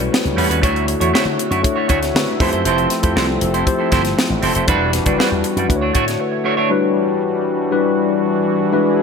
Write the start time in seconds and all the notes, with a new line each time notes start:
Already playing: G3 A3 C#4 E4 F#4 B4 C#5
0.00 muted clean electric guitar stroke, closed hi-hat
0.12 muted clean electric guitar stroke, snare
0.24 C#2, muted clean electric guitar stroke, closed hi-hat
0.36 E2 G3 C#4 F#4 B4, open hi-hat
0.49 D#2 G3 C#4 F#4 B4, closed hi-hat
0.62 D2 D3 A3 D4 E4 F#4 C#5 E5, kick, closed hi-hat
0.76 closed hi-hat
0.87 muted clean electric guitar stroke, closed hi-hat
1.00 E2 A3 D4 E4 F#4 C#5, closed hi-hat
1.13 A3 E4 F#4 C#5, muted slap bass stroke, snare
1.25 D3, muted clean electric guitar stroke
1.38 muted clean electric guitar stroke, closed hi-hat
1.51 F#2 A3 E4 F#4 C#5, closed hi-hat
1.63 A3 D4 E4 F#4 C#5, muted clean electric guitar stroke, kick, closed hi-hat
1.76 A3 E4 F#4 C#5
1.88 D2 A3 E4 F#4 C#5, kick, closed hi-hat
2.01 muted clean electric guitar stroke, snare, closed hi-hat
2.14 D3 B4 E5, muted clean electric guitar stroke, snare
2.27 muted clean electric guitar stroke
2.40 F2 F3 A3 C4 E4 F4 G4 A4 C5, kick, open hi-hat
2.53 F#2 C4 E4 A4 C5, closed hi-hat
2.65 F1 C4 E4 A4 C5, closed hi-hat
2.78 closed hi-hat
2.90 muted clean electric guitar stroke, snare, closed hi-hat
3.02 F2 A3 C4 E4 F4 G4 A4 C5, kick, closed hi-hat
3.16 C2 C4 E4 A4 C5, snare
3.29 muted clean electric guitar stroke
3.41 F1, muted clean electric guitar stroke, closed hi-hat
3.54 C4 E4 A4 C5, closed hi-hat
3.66 A3 E4 F4 G4 C5, muted clean electric guitar stroke, kick, closed hi-hat
3.79 C4 E4 A4 C5
3.91 G1 C4 E4 A4 C5, kick, snare, closed hi-hat
4.05 muted clean electric guitar stroke, snare, closed hi-hat
4.17 muted clean electric guitar stroke, snare
4.30 A1, muted clean electric guitar stroke
4.42 F#1 C4 E4 A4 C5, open hi-hat
4.55 F1 C4 E4 A4 C5, closed hi-hat
4.67 E1 E3 G3 D4 E4 F#4 B4, kick, closed hi-hat
4.93 snare, closed hi-hat
5.06 F#1 G3 D4 E4 F#4 B4, kick, closed hi-hat
5.18 G3 D4 F#4 B4, muted slap bass stroke, snare
5.31 E2, muted clean electric guitar stroke
5.44 muted clean electric guitar stroke, closed hi-hat
5.57 F#2 G3 D4 F#4 B4, closed hi-hat
5.68 D2 D3 A3 D4 E4 F#4 B4 C#5, muted clean electric guitar stroke, kick, closed hi-hat
5.75 C#5
5.82 A3 D4 F#4 C#5
5.94 A2 A3 D4 F#4 C#5, kick, closed hi-hat
6.08 snare, closed hi-hat
6.20 B4 E5, muted clean electric guitar stroke
6.32 muted clean electric guitar stroke
6.44 A3 D4 F#4 C#5
6.57 A3 D4 F#4 C#5
6.70 E3 G3 D4 E4 F#4 B4
7.71 G3 D4 E4 F#4 B4
8.72 G#3 D4 E4 F#4 G#4 B4